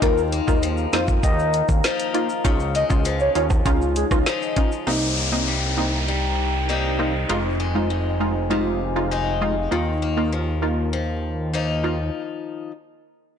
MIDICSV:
0, 0, Header, 1, 8, 480
1, 0, Start_track
1, 0, Tempo, 606061
1, 17, Time_signature, 4, 2, 24, 8
1, 10599, End_track
2, 0, Start_track
2, 0, Title_t, "Ambient pad"
2, 0, Program_c, 0, 92
2, 0, Note_on_c, 0, 63, 83
2, 16, Note_on_c, 0, 82, 93
2, 17, Note_on_c, 0, 70, 80
2, 17, Note_on_c, 0, 77, 79
2, 1905, Note_off_c, 0, 63, 0
2, 1917, Note_off_c, 0, 82, 0
2, 1918, Note_off_c, 0, 70, 0
2, 1938, Note_on_c, 0, 63, 80
2, 1938, Note_on_c, 0, 73, 77
2, 1938, Note_on_c, 0, 80, 91
2, 3825, Note_off_c, 0, 77, 0
2, 3838, Note_off_c, 0, 63, 0
2, 3838, Note_off_c, 0, 73, 0
2, 3839, Note_off_c, 0, 80, 0
2, 3857, Note_on_c, 0, 72, 70
2, 3858, Note_on_c, 0, 63, 75
2, 3858, Note_on_c, 0, 79, 74
2, 3859, Note_on_c, 0, 82, 88
2, 5758, Note_off_c, 0, 79, 0
2, 5759, Note_off_c, 0, 82, 0
2, 5777, Note_on_c, 0, 77, 71
2, 5778, Note_on_c, 0, 80, 89
2, 7665, Note_off_c, 0, 72, 0
2, 7678, Note_off_c, 0, 80, 0
2, 7700, Note_on_c, 0, 70, 72
2, 7701, Note_on_c, 0, 82, 85
2, 9585, Note_off_c, 0, 77, 0
2, 9586, Note_off_c, 0, 63, 0
2, 9600, Note_off_c, 0, 70, 0
2, 9600, Note_off_c, 0, 82, 0
2, 10599, End_track
3, 0, Start_track
3, 0, Title_t, "Soft synth lead"
3, 0, Program_c, 1, 80
3, 17, Note_on_c, 1, 70, 102
3, 173, Note_off_c, 1, 70, 0
3, 380, Note_on_c, 1, 70, 82
3, 457, Note_off_c, 1, 70, 0
3, 739, Note_on_c, 1, 72, 77
3, 816, Note_off_c, 1, 72, 0
3, 977, Note_on_c, 1, 75, 107
3, 1315, Note_off_c, 1, 75, 0
3, 2180, Note_on_c, 1, 75, 88
3, 2257, Note_off_c, 1, 75, 0
3, 2538, Note_on_c, 1, 73, 79
3, 2615, Note_off_c, 1, 73, 0
3, 2660, Note_on_c, 1, 73, 80
3, 2737, Note_off_c, 1, 73, 0
3, 3139, Note_on_c, 1, 68, 84
3, 3216, Note_off_c, 1, 68, 0
3, 10599, End_track
4, 0, Start_track
4, 0, Title_t, "Synth stab"
4, 0, Program_c, 2, 62
4, 15, Note_on_c, 2, 58, 97
4, 16, Note_on_c, 2, 63, 89
4, 20, Note_on_c, 2, 65, 102
4, 347, Note_off_c, 2, 58, 0
4, 348, Note_off_c, 2, 63, 0
4, 350, Note_off_c, 2, 65, 0
4, 375, Note_on_c, 2, 58, 77
4, 377, Note_on_c, 2, 63, 70
4, 380, Note_on_c, 2, 65, 83
4, 707, Note_off_c, 2, 58, 0
4, 708, Note_off_c, 2, 63, 0
4, 710, Note_off_c, 2, 65, 0
4, 736, Note_on_c, 2, 58, 81
4, 737, Note_on_c, 2, 63, 73
4, 740, Note_on_c, 2, 65, 87
4, 957, Note_off_c, 2, 58, 0
4, 958, Note_off_c, 2, 63, 0
4, 959, Note_off_c, 2, 65, 0
4, 1694, Note_on_c, 2, 58, 84
4, 1698, Note_on_c, 2, 63, 74
4, 1700, Note_on_c, 2, 65, 90
4, 1806, Note_off_c, 2, 58, 0
4, 1808, Note_off_c, 2, 63, 0
4, 1809, Note_off_c, 2, 65, 0
4, 1936, Note_on_c, 2, 61, 93
4, 1938, Note_on_c, 2, 63, 89
4, 1940, Note_on_c, 2, 65, 105
4, 2047, Note_off_c, 2, 61, 0
4, 2047, Note_off_c, 2, 63, 0
4, 2049, Note_off_c, 2, 65, 0
4, 2294, Note_on_c, 2, 61, 78
4, 2296, Note_on_c, 2, 63, 70
4, 2299, Note_on_c, 2, 65, 89
4, 2406, Note_off_c, 2, 61, 0
4, 2407, Note_off_c, 2, 63, 0
4, 2408, Note_off_c, 2, 65, 0
4, 2654, Note_on_c, 2, 61, 78
4, 2657, Note_on_c, 2, 63, 71
4, 2659, Note_on_c, 2, 65, 83
4, 2766, Note_off_c, 2, 61, 0
4, 2767, Note_off_c, 2, 63, 0
4, 2768, Note_off_c, 2, 65, 0
4, 2895, Note_on_c, 2, 61, 94
4, 2898, Note_on_c, 2, 63, 89
4, 2900, Note_on_c, 2, 65, 109
4, 3227, Note_off_c, 2, 61, 0
4, 3229, Note_off_c, 2, 63, 0
4, 3230, Note_off_c, 2, 65, 0
4, 3256, Note_on_c, 2, 61, 78
4, 3257, Note_on_c, 2, 63, 76
4, 3261, Note_on_c, 2, 65, 93
4, 3366, Note_off_c, 2, 61, 0
4, 3367, Note_off_c, 2, 63, 0
4, 3369, Note_off_c, 2, 65, 0
4, 3615, Note_on_c, 2, 61, 80
4, 3617, Note_on_c, 2, 63, 76
4, 3620, Note_on_c, 2, 65, 89
4, 3726, Note_off_c, 2, 61, 0
4, 3727, Note_off_c, 2, 63, 0
4, 3729, Note_off_c, 2, 65, 0
4, 3855, Note_on_c, 2, 58, 86
4, 3857, Note_on_c, 2, 60, 82
4, 3859, Note_on_c, 2, 63, 100
4, 4187, Note_off_c, 2, 58, 0
4, 4188, Note_off_c, 2, 60, 0
4, 4189, Note_off_c, 2, 63, 0
4, 4213, Note_on_c, 2, 58, 70
4, 4215, Note_on_c, 2, 60, 66
4, 4219, Note_on_c, 2, 63, 81
4, 4546, Note_off_c, 2, 58, 0
4, 4548, Note_off_c, 2, 60, 0
4, 4549, Note_off_c, 2, 63, 0
4, 4572, Note_on_c, 2, 58, 71
4, 4575, Note_on_c, 2, 60, 69
4, 4577, Note_on_c, 2, 63, 80
4, 4796, Note_off_c, 2, 58, 0
4, 4797, Note_off_c, 2, 60, 0
4, 4798, Note_off_c, 2, 63, 0
4, 5535, Note_on_c, 2, 58, 77
4, 5537, Note_on_c, 2, 60, 72
4, 5540, Note_on_c, 2, 63, 88
4, 5646, Note_off_c, 2, 58, 0
4, 5647, Note_off_c, 2, 60, 0
4, 5649, Note_off_c, 2, 63, 0
4, 5776, Note_on_c, 2, 56, 91
4, 5779, Note_on_c, 2, 63, 84
4, 5780, Note_on_c, 2, 65, 99
4, 5887, Note_off_c, 2, 56, 0
4, 5888, Note_off_c, 2, 63, 0
4, 5889, Note_off_c, 2, 65, 0
4, 6136, Note_on_c, 2, 56, 74
4, 6138, Note_on_c, 2, 63, 68
4, 6142, Note_on_c, 2, 65, 79
4, 6247, Note_off_c, 2, 56, 0
4, 6248, Note_off_c, 2, 63, 0
4, 6250, Note_off_c, 2, 65, 0
4, 6495, Note_on_c, 2, 56, 73
4, 6497, Note_on_c, 2, 63, 68
4, 6500, Note_on_c, 2, 65, 79
4, 6606, Note_off_c, 2, 56, 0
4, 6607, Note_off_c, 2, 63, 0
4, 6609, Note_off_c, 2, 65, 0
4, 6733, Note_on_c, 2, 56, 92
4, 6736, Note_on_c, 2, 63, 85
4, 6737, Note_on_c, 2, 65, 104
4, 7066, Note_off_c, 2, 56, 0
4, 7068, Note_off_c, 2, 63, 0
4, 7069, Note_off_c, 2, 65, 0
4, 7094, Note_on_c, 2, 56, 79
4, 7096, Note_on_c, 2, 63, 72
4, 7098, Note_on_c, 2, 65, 88
4, 7206, Note_off_c, 2, 56, 0
4, 7207, Note_off_c, 2, 63, 0
4, 7208, Note_off_c, 2, 65, 0
4, 7454, Note_on_c, 2, 56, 78
4, 7456, Note_on_c, 2, 63, 74
4, 7459, Note_on_c, 2, 65, 84
4, 7566, Note_off_c, 2, 56, 0
4, 7567, Note_off_c, 2, 63, 0
4, 7568, Note_off_c, 2, 65, 0
4, 7692, Note_on_c, 2, 58, 91
4, 7694, Note_on_c, 2, 63, 87
4, 7696, Note_on_c, 2, 65, 101
4, 8025, Note_off_c, 2, 58, 0
4, 8027, Note_off_c, 2, 63, 0
4, 8028, Note_off_c, 2, 65, 0
4, 8053, Note_on_c, 2, 58, 77
4, 8056, Note_on_c, 2, 63, 65
4, 8058, Note_on_c, 2, 65, 81
4, 8386, Note_off_c, 2, 58, 0
4, 8388, Note_off_c, 2, 63, 0
4, 8389, Note_off_c, 2, 65, 0
4, 8411, Note_on_c, 2, 58, 74
4, 8414, Note_on_c, 2, 63, 66
4, 8416, Note_on_c, 2, 65, 83
4, 8635, Note_off_c, 2, 58, 0
4, 8636, Note_off_c, 2, 63, 0
4, 8637, Note_off_c, 2, 65, 0
4, 9374, Note_on_c, 2, 58, 80
4, 9376, Note_on_c, 2, 63, 71
4, 9378, Note_on_c, 2, 65, 85
4, 9486, Note_off_c, 2, 58, 0
4, 9487, Note_off_c, 2, 63, 0
4, 9488, Note_off_c, 2, 65, 0
4, 10599, End_track
5, 0, Start_track
5, 0, Title_t, "Steel-string acoustic guitar"
5, 0, Program_c, 3, 25
5, 0, Note_on_c, 3, 51, 63
5, 0, Note_on_c, 3, 63, 73
5, 16, Note_off_c, 3, 51, 0
5, 16, Note_on_c, 3, 51, 89
5, 257, Note_on_c, 3, 58, 62
5, 497, Note_on_c, 3, 53, 69
5, 521, Note_off_c, 3, 63, 0
5, 1453, Note_off_c, 3, 58, 0
5, 1454, Note_off_c, 3, 53, 0
5, 1457, Note_on_c, 3, 53, 65
5, 1462, Note_on_c, 3, 58, 64
5, 1466, Note_on_c, 3, 63, 72
5, 1934, Note_off_c, 3, 51, 0
5, 1937, Note_on_c, 3, 49, 88
5, 1988, Note_off_c, 3, 58, 0
5, 2176, Note_on_c, 3, 56, 65
5, 2413, Note_off_c, 3, 53, 0
5, 2416, Note_on_c, 3, 53, 69
5, 2440, Note_off_c, 3, 63, 0
5, 3366, Note_off_c, 3, 53, 0
5, 3371, Note_off_c, 3, 56, 0
5, 3376, Note_on_c, 3, 53, 61
5, 3381, Note_on_c, 3, 56, 66
5, 3385, Note_on_c, 3, 63, 70
5, 3853, Note_off_c, 3, 49, 0
5, 3856, Note_on_c, 3, 48, 83
5, 3904, Note_off_c, 3, 53, 0
5, 3907, Note_off_c, 3, 56, 0
5, 4096, Note_on_c, 3, 58, 56
5, 4338, Note_on_c, 3, 55, 60
5, 4809, Note_off_c, 3, 55, 0
5, 4818, Note_on_c, 3, 55, 69
5, 5287, Note_off_c, 3, 55, 0
5, 5292, Note_off_c, 3, 58, 0
5, 5297, Note_on_c, 3, 55, 59
5, 5301, Note_on_c, 3, 58, 59
5, 5303, Note_off_c, 3, 63, 0
5, 5306, Note_on_c, 3, 63, 66
5, 5776, Note_on_c, 3, 41, 81
5, 5777, Note_off_c, 3, 48, 0
5, 5825, Note_off_c, 3, 55, 0
5, 5827, Note_off_c, 3, 58, 0
5, 6017, Note_on_c, 3, 56, 59
5, 6258, Note_on_c, 3, 51, 60
5, 6737, Note_on_c, 3, 48, 68
5, 7213, Note_off_c, 3, 56, 0
5, 7215, Note_off_c, 3, 51, 0
5, 7218, Note_on_c, 3, 51, 59
5, 7222, Note_on_c, 3, 56, 58
5, 7224, Note_off_c, 3, 63, 0
5, 7227, Note_on_c, 3, 63, 64
5, 7694, Note_off_c, 3, 48, 0
5, 7697, Note_off_c, 3, 41, 0
5, 7697, Note_off_c, 3, 51, 0
5, 7697, Note_on_c, 3, 51, 81
5, 7748, Note_off_c, 3, 56, 0
5, 7937, Note_on_c, 3, 58, 59
5, 8177, Note_on_c, 3, 53, 62
5, 8201, Note_off_c, 3, 63, 0
5, 8653, Note_off_c, 3, 53, 0
5, 8656, Note_on_c, 3, 53, 69
5, 9132, Note_off_c, 3, 53, 0
5, 9132, Note_off_c, 3, 58, 0
5, 9136, Note_on_c, 3, 53, 60
5, 9141, Note_on_c, 3, 58, 58
5, 9146, Note_on_c, 3, 63, 66
5, 9667, Note_off_c, 3, 58, 0
5, 10065, Note_off_c, 3, 51, 0
5, 10065, Note_off_c, 3, 53, 0
5, 10065, Note_off_c, 3, 63, 0
5, 10599, End_track
6, 0, Start_track
6, 0, Title_t, "Analog synth bass"
6, 0, Program_c, 4, 38
6, 17, Note_on_c, 4, 39, 115
6, 324, Note_off_c, 4, 39, 0
6, 380, Note_on_c, 4, 39, 99
6, 686, Note_off_c, 4, 39, 0
6, 737, Note_on_c, 4, 41, 93
6, 942, Note_off_c, 4, 41, 0
6, 976, Note_on_c, 4, 39, 104
6, 1284, Note_off_c, 4, 39, 0
6, 1336, Note_on_c, 4, 39, 89
6, 1439, Note_off_c, 4, 39, 0
6, 1939, Note_on_c, 4, 37, 103
6, 2246, Note_off_c, 4, 37, 0
6, 2300, Note_on_c, 4, 37, 102
6, 2606, Note_off_c, 4, 37, 0
6, 2659, Note_on_c, 4, 39, 99
6, 2863, Note_off_c, 4, 39, 0
6, 2896, Note_on_c, 4, 37, 95
6, 3204, Note_off_c, 4, 37, 0
6, 3256, Note_on_c, 4, 37, 91
6, 3359, Note_off_c, 4, 37, 0
6, 3856, Note_on_c, 4, 36, 81
6, 5745, Note_off_c, 4, 36, 0
6, 5778, Note_on_c, 4, 29, 79
6, 7666, Note_off_c, 4, 29, 0
6, 7699, Note_on_c, 4, 39, 81
6, 9586, Note_off_c, 4, 39, 0
6, 10599, End_track
7, 0, Start_track
7, 0, Title_t, "Downlifter"
7, 0, Program_c, 5, 103
7, 3857, Note_on_c, 5, 60, 82
7, 7697, Note_off_c, 5, 60, 0
7, 10599, End_track
8, 0, Start_track
8, 0, Title_t, "Drums"
8, 17, Note_on_c, 9, 36, 119
8, 17, Note_on_c, 9, 42, 72
8, 21, Note_on_c, 9, 82, 72
8, 96, Note_off_c, 9, 36, 0
8, 96, Note_off_c, 9, 42, 0
8, 100, Note_off_c, 9, 82, 0
8, 139, Note_on_c, 9, 82, 50
8, 219, Note_off_c, 9, 82, 0
8, 257, Note_on_c, 9, 42, 80
8, 258, Note_on_c, 9, 82, 63
8, 336, Note_off_c, 9, 42, 0
8, 337, Note_off_c, 9, 82, 0
8, 379, Note_on_c, 9, 36, 90
8, 380, Note_on_c, 9, 82, 73
8, 459, Note_off_c, 9, 36, 0
8, 459, Note_off_c, 9, 82, 0
8, 495, Note_on_c, 9, 82, 77
8, 500, Note_on_c, 9, 42, 77
8, 575, Note_off_c, 9, 82, 0
8, 579, Note_off_c, 9, 42, 0
8, 613, Note_on_c, 9, 82, 46
8, 692, Note_off_c, 9, 82, 0
8, 735, Note_on_c, 9, 82, 51
8, 737, Note_on_c, 9, 42, 71
8, 740, Note_on_c, 9, 38, 108
8, 814, Note_off_c, 9, 82, 0
8, 817, Note_off_c, 9, 42, 0
8, 819, Note_off_c, 9, 38, 0
8, 852, Note_on_c, 9, 82, 74
8, 856, Note_on_c, 9, 36, 89
8, 931, Note_off_c, 9, 82, 0
8, 936, Note_off_c, 9, 36, 0
8, 976, Note_on_c, 9, 82, 79
8, 977, Note_on_c, 9, 36, 101
8, 980, Note_on_c, 9, 42, 77
8, 1055, Note_off_c, 9, 82, 0
8, 1056, Note_off_c, 9, 36, 0
8, 1059, Note_off_c, 9, 42, 0
8, 1102, Note_on_c, 9, 82, 57
8, 1181, Note_off_c, 9, 82, 0
8, 1213, Note_on_c, 9, 82, 58
8, 1218, Note_on_c, 9, 42, 80
8, 1292, Note_off_c, 9, 82, 0
8, 1297, Note_off_c, 9, 42, 0
8, 1335, Note_on_c, 9, 82, 79
8, 1337, Note_on_c, 9, 36, 101
8, 1414, Note_off_c, 9, 82, 0
8, 1416, Note_off_c, 9, 36, 0
8, 1457, Note_on_c, 9, 82, 71
8, 1459, Note_on_c, 9, 38, 104
8, 1460, Note_on_c, 9, 42, 71
8, 1536, Note_off_c, 9, 82, 0
8, 1538, Note_off_c, 9, 38, 0
8, 1539, Note_off_c, 9, 42, 0
8, 1580, Note_on_c, 9, 42, 62
8, 1581, Note_on_c, 9, 82, 53
8, 1659, Note_off_c, 9, 42, 0
8, 1660, Note_off_c, 9, 82, 0
8, 1699, Note_on_c, 9, 42, 73
8, 1778, Note_off_c, 9, 42, 0
8, 1817, Note_on_c, 9, 82, 66
8, 1896, Note_off_c, 9, 82, 0
8, 1939, Note_on_c, 9, 36, 113
8, 1939, Note_on_c, 9, 82, 73
8, 1941, Note_on_c, 9, 42, 71
8, 2018, Note_off_c, 9, 36, 0
8, 2018, Note_off_c, 9, 82, 0
8, 2020, Note_off_c, 9, 42, 0
8, 2058, Note_on_c, 9, 82, 50
8, 2137, Note_off_c, 9, 82, 0
8, 2178, Note_on_c, 9, 82, 67
8, 2179, Note_on_c, 9, 42, 81
8, 2257, Note_off_c, 9, 82, 0
8, 2258, Note_off_c, 9, 42, 0
8, 2297, Note_on_c, 9, 82, 75
8, 2300, Note_on_c, 9, 36, 94
8, 2376, Note_off_c, 9, 82, 0
8, 2379, Note_off_c, 9, 36, 0
8, 2414, Note_on_c, 9, 82, 73
8, 2419, Note_on_c, 9, 42, 76
8, 2494, Note_off_c, 9, 82, 0
8, 2499, Note_off_c, 9, 42, 0
8, 2532, Note_on_c, 9, 82, 48
8, 2611, Note_off_c, 9, 82, 0
8, 2656, Note_on_c, 9, 82, 51
8, 2657, Note_on_c, 9, 42, 76
8, 2735, Note_off_c, 9, 82, 0
8, 2736, Note_off_c, 9, 42, 0
8, 2773, Note_on_c, 9, 65, 72
8, 2773, Note_on_c, 9, 82, 73
8, 2776, Note_on_c, 9, 36, 94
8, 2852, Note_off_c, 9, 65, 0
8, 2852, Note_off_c, 9, 82, 0
8, 2855, Note_off_c, 9, 36, 0
8, 2896, Note_on_c, 9, 36, 97
8, 2896, Note_on_c, 9, 42, 77
8, 2897, Note_on_c, 9, 82, 83
8, 2975, Note_off_c, 9, 36, 0
8, 2975, Note_off_c, 9, 42, 0
8, 2976, Note_off_c, 9, 82, 0
8, 3023, Note_on_c, 9, 82, 55
8, 3102, Note_off_c, 9, 82, 0
8, 3135, Note_on_c, 9, 82, 59
8, 3136, Note_on_c, 9, 42, 80
8, 3215, Note_off_c, 9, 82, 0
8, 3216, Note_off_c, 9, 42, 0
8, 3256, Note_on_c, 9, 36, 98
8, 3257, Note_on_c, 9, 82, 74
8, 3258, Note_on_c, 9, 37, 98
8, 3335, Note_off_c, 9, 36, 0
8, 3336, Note_off_c, 9, 82, 0
8, 3338, Note_off_c, 9, 37, 0
8, 3377, Note_on_c, 9, 38, 108
8, 3378, Note_on_c, 9, 42, 67
8, 3379, Note_on_c, 9, 82, 71
8, 3456, Note_off_c, 9, 38, 0
8, 3457, Note_off_c, 9, 42, 0
8, 3458, Note_off_c, 9, 82, 0
8, 3503, Note_on_c, 9, 82, 49
8, 3582, Note_off_c, 9, 82, 0
8, 3615, Note_on_c, 9, 42, 73
8, 3617, Note_on_c, 9, 36, 95
8, 3694, Note_off_c, 9, 42, 0
8, 3696, Note_off_c, 9, 36, 0
8, 3738, Note_on_c, 9, 82, 68
8, 3817, Note_off_c, 9, 82, 0
8, 10599, End_track
0, 0, End_of_file